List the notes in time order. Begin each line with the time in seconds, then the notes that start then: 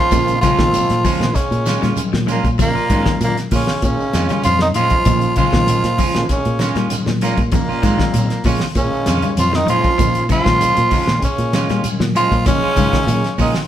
Already playing: F3 F4
0.10 A#2 D#3 F3 G#3 C#4, kick, snare, closed hi-hat, low conga, shekere
0.28 closed hi-hat, shekere
0.41 C#3 F3 G#3 C#4 F4, kick, snare, closed hi-hat, high conga, shekere
0.58 A#2 D#3 G#3 C4, kick, snare, closed hi-hat, shekere
0.73 closed hi-hat, high conga, shekere
0.90 A#2, snare, closed hi-hat, shekere
1.05 F3 G#3 C#4 F4, kick, snare, open hi-hat, low conga, shekere
1.20 A#2 D#3 G#3 C#4, snare, closed hi-hat, shekere
1.34 C#3 C#4, kick, snare, closed hi-hat, shekere
1.51 A#2, closed hi-hat, shekere
1.66 A#2 D#3 G#3 C#4 F4, snare, closed hi-hat, high conga, shekere
1.82 A#2 G3 C#4 F4, snare, closed hi-hat, low conga, shekere
1.96 muted fingered electric bass stroke, closed hi-hat, high conga, shekere
2.13 A#2 F3, snare, high conga, shekere
2.27 F3 G#3 C#4 F4, closed hi-hat, high conga, shekere
2.32 A#2 A#3
2.44 A#2, kick, closed hi-hat, shekere
2.58 A#2 D#3 F3 G#3 A#3 C#4, kick, snare, closed hi-hat, low conga, shekere
2.75 F4, muted fingered electric bass stroke, muted clean electric guitar stroke, shekere
2.88 G#2 A#2 D#3 G#3 C#4 F4, kick, closed hi-hat, high conga, shekere
3.06 D#3, kick, snare, closed hi-hat, high conga, shekere
3.21 A#2 A#3, closed hi-hat, high conga, shekere
3.37 snare, closed hi-hat, shekere
3.51 A#2 C#3 F3 F4, muted clean electric guitar stroke, kick, open hi-hat, low conga, shekere
3.55 C#4
3.67 snare, shekere
3.82 A#2 C#3 D#3 G#3 C#4, kick, closed hi-hat, shekere
3.99 shekere
4.13 F2 G#3 C#4 F4, snare, closed hi-hat, high conga, shekere
4.29 G3 C#4 F4, snare, closed hi-hat, low conga, shekere
4.43 F2 F3 F4, snare, closed hi-hat, high conga, shekere
4.59 D#3 D#4, snare, high conga, shekere
4.74 A#2 F3 G#3 C#4 F4, closed hi-hat, shekere
4.90 A#2 D#3 G#3 C#4, kick, closed hi-hat, high conga, shekere
5.05 A#2 D#3 F3 G#3 C#4, kick, closed hi-hat, low conga, shekere
5.21 closed hi-hat, shekere
5.36 C#3 F3 G#3 C#4 F4, kick, closed hi-hat, high conga, shekere
5.52 A#2 D#3 G#3 C#4, kick, snare, closed hi-hat, high conga, shekere
5.66 closed hi-hat, high conga, shekere
5.84 A#2, snare, closed hi-hat, shekere
5.98 F3 G#3 C#4 F4, kick, open hi-hat, low conga, shekere
6.15 A#2 D#3 G#3 C#4, snare, closed hi-hat, shekere
6.29 C#3 C#4, muted fingered electric bass stroke, kick, snare, closed hi-hat, shekere
6.45 A#2, closed hi-hat, shekere
6.59 A#2 D#3 G#3 C#4 F4, snare, closed hi-hat, high conga, shekere
6.76 A#2 G3 C#4 F4, snare, closed hi-hat, shekere
6.90 muted fingered electric bass stroke, snare, closed hi-hat, high conga, shekere
7.06 A#2 F3, snare, high conga, shekere
7.21 A#2 F3 G#3 A#3 C#4 F4, closed hi-hat, high conga, shekere
7.37 A#2, kick, closed hi-hat, high conga, shekere
7.51 A#2 D#3 F3 G#3 A#3 C#4, kick, snare, closed hi-hat, low conga, shekere
7.69 C#4 F4, muted fingered electric bass stroke, shekere
7.81 G#2 A#2 D#3 F3 G#3 C4, muted clean electric guitar stroke, kick, snare, closed hi-hat, high conga, shekere
7.86 F4
7.98 D#3, kick, snare, closed hi-hat, high conga, shekere
8.14 A#2, closed hi-hat, high conga, shekere
8.30 snare, closed hi-hat, shekere
8.44 A#2 C#3 F3 G#3 C#4 F4, kick, open hi-hat, low conga, shekere
8.60 snare, shekere
8.75 A#2 C#3 D#3 G#3 C#4, kick, closed hi-hat, shekere
8.93 shekere
9.06 F2 C#4 F4, snare, closed hi-hat, high conga, shekere
9.22 G3, closed hi-hat, low conga, shekere
9.37 F2 F3 F4, closed hi-hat, high conga, shekere
9.53 D#3 F3 D#4, snare, shekere
9.67 A#2 F3 G#3 C#4 F4, closed hi-hat, high conga, shekere
9.82 A#2 D#3 G#3 C#4, kick, closed hi-hat, shekere
9.97 A#2 D#3 F3 G#3 C#4, kick, closed hi-hat, low conga, shekere
10.15 closed hi-hat, shekere
10.29 C#3 F3 G#3 C#4 F4, kick, closed hi-hat, high conga, shekere
10.45 A#2 D#3 G#3 C#4, kick, snare, closed hi-hat, high conga, shekere
10.61 closed hi-hat, high conga, shekere
10.77 A#2, closed hi-hat, shekere
10.91 F3 G#3 C#4 F4, kick, open hi-hat, low conga, shekere
11.07 A#2 D#3 G#3 C#4, snare, closed hi-hat, shekere
11.22 C#3 C#4, muted fingered electric bass stroke, kick, closed hi-hat, shekere
11.38 A#2, closed hi-hat, shekere
11.53 A#2 D#3 G#3 C#4 F4, snare, closed hi-hat, high conga, shekere
11.69 A#2 G3 C#4 F4, snare, closed hi-hat, shekere
11.84 muted fingered electric bass stroke, closed hi-hat, high conga, shekere
12.00 A#2 F3, snare, high conga, shekere
12.14 F3 G#3 C#4 F4, muted clean electric guitar stroke, closed hi-hat, high conga, shekere
12.31 A#2, kick, closed hi-hat, high conga, shekere
12.45 A#2 C#3 D#3 F3 G#3 C#4, kick, snare, closed hi-hat, low conga, shekere
12.62 C#4 F4, muted fingered electric bass stroke, shekere
12.76 G#2 A#2 C#3 D#3 G#3 C#4 F4, kick, closed hi-hat, high conga, shekere
12.93 D#3, kick, snare, closed hi-hat, shekere
13.07 A#2, closed hi-hat, high conga, shekere
13.24 snare, closed hi-hat, shekere
13.38 A#2 D#3 F3 G#3 C#4 D#4 F4, kick, open hi-hat, low conga, shekere
13.54 snare, shekere